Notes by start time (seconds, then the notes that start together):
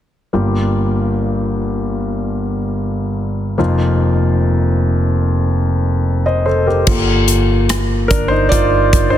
0.33 G1 G2 A#3 F4 G4
3.58 F1 F2 A#3 D#4 F4
6.26 C5 D#5
6.46 A4 C5
6.67 G4 A#4
6.87 G1 A#3 F4 A4, kick, crash
7.28 closed hi-hat
7.69 cross-stick, closed hi-hat
8.08 G1 D4 A#4, kick, closed hi-hat
8.28 D#4 C5
8.49 G1 F4 D5, kick, closed hi-hat
8.93 kick, closed hi-hat
9.10 D#4 C5